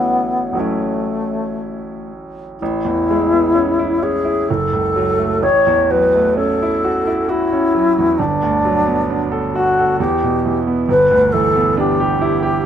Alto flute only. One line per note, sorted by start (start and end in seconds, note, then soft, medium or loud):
0.00 0.60 B3 medium
0.59 2.10 A3 medium
2.59 4.04 E4 medium
4.03 4.50 G#4 medium
4.48 5.44 A4 medium
5.42 5.92 C#5 medium
5.90 6.36 B4 medium
6.37 7.30 A4 medium
7.29 8.19 E4 medium
8.18 9.27 D4 medium
9.53 9.98 F#4 medium
9.99 10.60 G4 medium
10.89 11.33 B4 medium
11.32 11.77 A4 medium
11.78 12.66 G4 medium